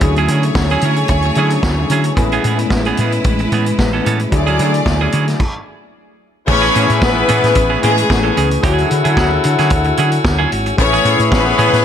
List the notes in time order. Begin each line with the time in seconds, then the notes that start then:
0.00 D2 F#3 A3 C#4 D4 E4 G#4 C#5, muted clean electric guitar stroke, kick, closed hi-hat
0.16 F#3 C#4 E4 G#4, closed hi-hat
0.28 D3 F#3 C#4 E4, closed hi-hat
0.32 G#4
0.43 closed hi-hat
0.55 D2, muted clean electric guitar stroke, kick, snare
0.70 F#3 C#4 E4 G#4, closed hi-hat
0.81 D3 F#3 C#4 E4, closed hi-hat
0.86 G#4
0.96 muted clean electric guitar stroke, closed hi-hat
1.08 D2, muted clean electric guitar stroke, kick, closed hi-hat
1.22 muted clean electric guitar stroke, closed hi-hat
1.35 D3 F#3 C#4 D4 E4 G#4, closed hi-hat
1.39 G#4
1.50 muted clean electric guitar stroke, closed hi-hat
1.63 D2, kick, snare
1.79 muted clean electric guitar stroke
1.90 D3 F#3 C#4 E4 G#4, closed hi-hat
2.04 muted clean electric guitar stroke, closed hi-hat
2.15 A1 G#3 A3 B3 C#4 E4 G#4 B4, muted clean electric guitar stroke, kick, closed hi-hat
2.32 E3 B3 C#4 G#4, closed hi-hat
2.44 A2 E3 B3 C#4 G#4, closed hi-hat
2.59 muted clean electric guitar stroke, closed hi-hat
2.70 A1, muted clean electric guitar stroke, kick, snare
2.85 E3 B3 C#4 G#4, closed hi-hat
2.97 A2 E3 B3 C#4 G#4, closed hi-hat
3.12 muted clean electric guitar stroke, closed hi-hat
3.24 A1, kick, closed hi-hat
3.39 muted clean electric guitar stroke, closed hi-hat
3.52 A2 E3 B3 C#4 G#4, closed hi-hat
3.66 muted clean electric guitar stroke, closed hi-hat
3.79 A1, muted clean electric guitar stroke, kick, snare
3.93 E3 B3 C#4 A4
4.06 A2 E3 B3 C#4 A4, closed hi-hat
4.19 muted clean electric guitar stroke, closed hi-hat
4.30 D2 F#3 A3 D4 E4 G#4 D5, muted clean electric guitar stroke, kick, closed hi-hat
4.47 F#3 C#4 E4 G#4, closed hi-hat
4.59 D3 F#3 C#4 E4 G#4, closed hi-hat
4.74 muted clean electric guitar stroke, closed hi-hat
4.86 D2, muted clean electric guitar stroke, kick, snare
5.01 F#3 C#4 E4 G#4
5.12 D3 F#3 C#4 E4 G#4, closed hi-hat
5.28 snare, closed hi-hat
5.40 kick, crash
6.47 A1 A3 B3 C#4 E4 G#4 B4 C#5 G#5 C#6, muted clean electric guitar stroke, kick, crash
6.54 C#4
6.62 E3 B3 C#4 G#4, closed hi-hat
6.74 A2 E3 B3 C#4 G#4, closed hi-hat
6.89 A2, muted clean electric guitar stroke, closed hi-hat
7.01 A1 B3 B4, muted clean electric guitar stroke, kick, snare
7.16 muted clean electric guitar stroke
7.28 A2 E3 B3 C#4 G#4, closed hi-hat
7.43 A2, muted clean electric guitar stroke, snare, closed hi-hat
7.55 A1, muted clean electric guitar stroke, kick, closed hi-hat
7.70 E3 B3 C#4 G#4
7.83 A2 E3 G#3 B3 C#4 G#4, closed hi-hat
7.97 muted clean electric guitar stroke, closed hi-hat
8.09 A1 A3 C#4 E4 G#4 B4, muted clean electric guitar stroke, kick, snare
8.23 E3 B3 C#4 A4
8.36 C#2 E3 B3 C#4 G#4, closed hi-hat
8.50 muted clean electric guitar stroke, closed hi-hat
8.61 D2 F3 C#4 D4 E4 F#4 G#4 A4 C#5 F#5 E6, kick, closed hi-hat
8.74 F#3
8.78 closed hi-hat
8.91 D3, closed hi-hat
9.04 D3 F#3 C#4 E4 G#4, closed hi-hat
9.16 D2 F#3 C#4 E4 G#4, kick, snare
9.31 muted clean electric guitar stroke
9.44 D3, muted clean electric guitar stroke, closed hi-hat
9.58 D3 F#3 C#4 E4 G#4, snare, closed hi-hat
9.70 D2, kick, closed hi-hat
9.84 muted clean electric guitar stroke, closed hi-hat
9.97 D3 F#3 C#4 E4 G#4, closed hi-hat
10.12 muted clean electric guitar stroke, closed hi-hat
10.24 D2, muted clean electric guitar stroke, kick, snare
10.39 F#3 C#4 E4 G#4
10.52 G#1, muted clean electric guitar stroke, closed hi-hat
10.66 muted clean electric guitar stroke, closed hi-hat
10.77 A1 A3 C#4 E4 G#4 B4 C#5 C#6, muted clean electric guitar stroke, kick, closed hi-hat
10.93 E3 B3 C#4 G#4, closed hi-hat
11.05 A2 E3 B3 C#4 G#4, closed hi-hat
11.19 A2, closed hi-hat
11.31 A1 B3 B4, muted clean electric guitar stroke, kick, snare
11.45 muted clean electric guitar stroke
11.58 A2 E3 B3 C#4 G#4, closed hi-hat
11.73 A2, snare, closed hi-hat